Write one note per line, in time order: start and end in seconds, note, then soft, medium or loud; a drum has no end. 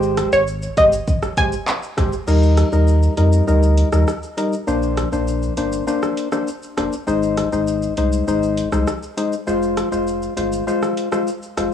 0.00 0.23 G#1 loud
0.00 0.43 G#3 loud
0.00 0.43 G4 medium
0.00 0.43 C5 loud
0.00 shaker medium
0.17 cross-stick loud
0.17 closed hi-hat medium
0.17 shaker medium
0.32 0.68 G#1 medium
0.32 0.42 C#5 medium
0.32 shaker medium
0.47 shaker medium
0.62 shaker medium
0.77 1.01 G1 medium
0.77 0.95 G#3 medium
0.77 0.95 G4 medium
0.77 0.95 C5 medium
0.77 0.87 D#5 medium
0.77 kick medium
0.77 closed hi-hat medium
0.77 shaker medium
0.92 shaker medium
1.08 kick loud
1.08 shaker medium
1.23 cross-stick medium
1.23 shaker medium
1.37 1.55 G#3 medium
1.37 1.55 G4 medium
1.37 1.55 C5 medium
1.37 1.47 G#5 medium
1.37 kick medium
1.37 closed hi-hat medium
1.37 shaker soft
1.52 shaker medium
1.68 clap loud
1.68 shaker medium
1.83 shaker medium
1.97 2.09 F1 loud
1.97 2.15 G#3 medium
1.97 2.15 G4 medium
1.97 2.15 C5 medium
1.97 kick loud
1.97 cross-stick loud
1.97 closed hi-hat medium
1.97 shaker medium
2.13 shaker medium
2.27 2.63 D#2 loud
2.27 2.69 G3 medium
2.27 2.69 D#4 medium
2.27 2.69 A#4 loud
2.27 crash medium
2.27 shaker medium
2.43 shaker medium
2.57 cross-stick medium
2.57 closed hi-hat medium
2.57 shaker medium
2.72 3.08 D#2 medium
2.72 3.14 G3 medium
2.72 3.14 D#4 medium
2.72 3.14 A#4 medium
2.72 shaker medium
2.88 shaker medium
3.03 shaker medium
3.17 3.41 F2 medium
3.17 3.45 G3 medium
3.17 3.45 D#4 medium
3.17 3.45 A#4 medium
3.17 closed hi-hat medium
3.17 shaker soft
3.33 shaker medium
3.47 3.83 D2 loud
3.47 3.89 G3 medium
3.47 3.89 D#4 medium
3.47 3.89 A#4 loud
3.47 shaker medium
3.63 shaker medium
3.77 closed hi-hat medium
3.77 shaker soft
3.92 4.04 D#2 medium
3.92 4.10 G3 medium
3.92 4.10 D#4 medium
3.92 4.10 A#4 medium
3.92 cross-stick medium
3.92 shaker medium
4.08 cross-stick medium
4.08 shaker medium
4.23 shaker medium
4.37 4.55 G3 medium
4.37 4.55 D#4 medium
4.37 4.55 A#4 medium
4.37 closed hi-hat medium
4.37 shaker medium
4.53 shaker medium
4.67 5.03 A#1 loud
4.67 5.09 A#3 loud
4.67 5.09 D4 medium
4.67 5.09 C5 loud
4.67 shaker medium
4.83 shaker medium
4.97 cross-stick medium
4.97 closed hi-hat medium
4.97 shaker medium
5.12 5.48 A#1 loud
5.12 5.54 A#3 medium
5.12 5.54 D4 medium
5.12 5.54 C5 medium
5.12 shaker medium
5.28 shaker medium
5.43 shaker medium
5.57 5.81 G1 loud
5.57 5.85 A#3 medium
5.57 5.85 D4 medium
5.57 5.85 C5 medium
5.57 closed hi-hat medium
5.57 shaker soft
5.72 shaker medium
5.87 6.29 A#3 medium
5.87 6.29 D4 medium
5.87 6.29 C5 loud
5.87 shaker medium
6.03 cross-stick medium
6.03 shaker medium
6.17 closed hi-hat medium
6.17 shaker soft
6.32 6.50 A#3 medium
6.32 6.50 D4 medium
6.32 6.50 C5 medium
6.32 cross-stick medium
6.32 shaker medium
6.48 shaker medium
6.63 shaker medium
6.77 6.90 F1 medium
6.77 6.95 A#3 medium
6.77 6.95 D4 medium
6.77 6.95 C5 medium
6.77 cross-stick medium
6.77 closed hi-hat medium
6.77 shaker medium
6.93 shaker medium
7.07 7.43 G#1 loud
7.07 7.49 G#3 medium
7.07 7.49 D#4 medium
7.07 7.49 C5 loud
7.07 shaker medium
7.23 shaker medium
7.37 cross-stick medium
7.37 closed hi-hat medium
7.37 shaker medium
7.52 7.88 G#1 loud
7.52 7.94 G#3 medium
7.52 7.94 D#4 medium
7.52 7.94 C5 medium
7.52 shaker medium
7.67 shaker medium
7.82 shaker medium
7.97 8.21 C2 medium
7.97 8.25 G#3 medium
7.97 8.25 D#4 medium
7.97 8.25 C5 medium
7.97 closed hi-hat medium
7.97 shaker soft
8.12 shaker medium
8.27 8.63 G#1 loud
8.27 8.69 G#3 medium
8.27 8.69 D#4 medium
8.27 8.69 C5 loud
8.27 shaker medium
8.43 shaker medium
8.57 closed hi-hat medium
8.57 shaker soft
8.72 8.84 C2 medium
8.72 8.90 G#3 medium
8.72 8.90 D#4 medium
8.72 8.90 C5 medium
8.72 cross-stick medium
8.72 shaker medium
8.87 cross-stick medium
8.87 shaker medium
9.03 shaker medium
9.17 9.35 G#3 medium
9.17 9.35 D#4 medium
9.17 9.35 C5 medium
9.17 closed hi-hat medium
9.17 shaker medium
9.33 shaker medium
9.47 9.83 F1 loud
9.47 9.89 G#3 loud
9.47 9.89 F4 medium
9.47 9.89 C5 loud
9.47 shaker medium
9.62 shaker medium
9.77 cross-stick medium
9.77 closed hi-hat medium
9.77 shaker medium
9.92 10.28 F1 medium
9.92 10.34 G#3 medium
9.92 10.34 F4 medium
9.92 10.34 C5 medium
9.92 shaker medium
10.07 shaker medium
10.22 shaker medium
10.37 10.61 G1 medium
10.37 10.65 G#3 medium
10.37 10.65 F4 medium
10.37 10.65 C5 medium
10.37 closed hi-hat medium
10.37 shaker soft
10.53 shaker medium
10.67 11.09 G#3 medium
10.67 11.09 F4 medium
10.67 11.09 C5 loud
10.67 shaker medium
10.83 cross-stick medium
10.83 shaker medium
10.97 closed hi-hat medium
10.97 shaker soft
11.12 11.30 G#3 medium
11.12 11.30 F4 medium
11.12 11.30 C5 medium
11.12 cross-stick loud
11.12 shaker medium
11.27 shaker medium
11.43 shaker medium
11.57 11.69 F1 medium
11.57 11.74 G#3 medium
11.57 11.74 F4 medium
11.57 11.74 C5 medium
11.57 cross-stick medium
11.57 closed hi-hat medium
11.57 shaker medium